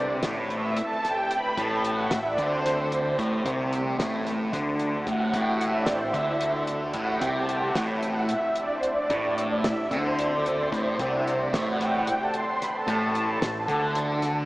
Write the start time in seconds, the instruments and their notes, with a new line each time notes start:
Already playing: fingered electric bass C2, distorted electric guitar C3
0.22 fingered electric bass A1, distorted electric guitar A2, snare, closed hi-hat
0.50 string machine E5, closed hi-hat
0.77 closed hi-hat
0.83 string machine A5
1.05 string machine G5, snare, closed hi-hat
1.19 string machine G5
1.31 string machine B5, closed hi-hat
1.57 fingered electric bass A1, distorted electric guitar A2, kick, closed hi-hat
1.62 string machine A5
1.75 string machine G5
1.85 string machine F#5, closed hi-hat
2.10 fingered electric bass A1, distorted electric guitar A2, string machine E5, snare, closed hi-hat
2.26 string machine D5
2.37 fingered electric bass D2, distorted electric guitar D3, string machine C5, kick, closed hi-hat
2.66 snare, closed hi-hat
2.92 closed hi-hat
3.18 fingered electric bass A1, distorted electric guitar A2, kick, snare, closed hi-hat
3.44 fingered electric bass C2, distorted electric guitar C3, kick, closed hi-hat
3.73 closed hi-hat
3.98 fingered electric bass A1, distorted electric guitar A2, snare, closed hi-hat
4.27 snare, closed hi-hat
4.53 fingered electric bass D2, distorted electric guitar D3, kick, snare, closed hi-hat
4.79 closed hi-hat
5.06 fingered electric bass A1, distorted electric guitar A2, string machine F#5, kick, closed hi-hat
5.32 fingered electric bass A1, distorted electric guitar A2, string machine G5, kick, closed hi-hat
5.48 string machine F#5
5.61 string machine E5, closed hi-hat
5.76 string machine D5
5.86 fingered electric bass A1, distorted electric guitar A2, string machine C5, snare, closed hi-hat
6.04 string machine E5
6.13 fingered electric bass D2, distorted electric guitar D3, kick, closed hi-hat
6.41 closed hi-hat
6.67 closed hi-hat
6.94 fingered electric bass A1, distorted electric guitar A2, string machine F#5, kick, closed hi-hat
7.12 string machine G5
7.20 fingered electric bass C2, distorted electric guitar C3, kick, closed hi-hat
7.39 string machine A5
7.49 string machine G5, closed hi-hat
7.67 string machine F#5
7.74 fingered electric bass A1, distorted electric guitar A2, snare, closed hi-hat
7.93 string machine E5
8.03 closed hi-hat
8.08 string machine F#5
8.20 string machine E5
8.29 closed hi-hat
8.56 string machine D5, closed hi-hat
8.72 string machine C5
8.83 string machine D5, closed hi-hat
9.10 fingered electric bass A1, distorted electric guitar A2, kick, closed hi-hat
9.38 closed hi-hat
9.53 string machine E5
9.64 fingered electric bass A1, distorted electric guitar A2, snare, closed hi-hat
9.91 fingered electric bass D2, distorted electric guitar D3, string machine C5, kick, closed hi-hat
10.19 closed hi-hat
10.46 string machine D5, closed hi-hat
10.59 string machine C5
10.72 fingered electric bass A1, distorted electric guitar A2, string machine C5, kick, snare, closed hi-hat
10.98 fingered electric bass C2, distorted electric guitar C3, string machine D5, kick, closed hi-hat
11.06 string machine F#5
11.12 string machine E5
11.25 string machine C5, closed hi-hat
11.39 string machine D5
11.52 fingered electric bass A1, distorted electric guitar A2, string machine E5, snare, closed hi-hat
11.66 string machine F#5
11.75 string machine A5
11.80 string machine G5, snare, closed hi-hat
11.91 string machine F#5
12.05 string machine G5, closed hi-hat
12.20 string machine A5
12.34 string machine C6, closed hi-hat
12.45 string machine C6
12.58 string machine B5, snare, closed hi-hat
12.73 string machine A5
12.87 fingered electric bass A1, distorted electric guitar A2, kick, closed hi-hat
13.15 closed hi-hat
13.41 fingered electric bass A1, distorted electric guitar A2, snare, closed hi-hat
13.68 fingered electric bass D2, distorted electric guitar D3, kick, closed hi-hat
13.95 closed hi-hat
14.22 snare, closed hi-hat